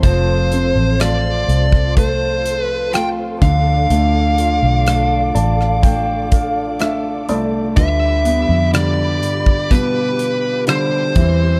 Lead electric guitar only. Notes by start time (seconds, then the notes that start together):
0.04 C5
1.01 D5
1.98 C5
2.60 B4
2.94 G5
3.42 F5
7.77 E5
8.74 D5
9.71 B4
10.69 C5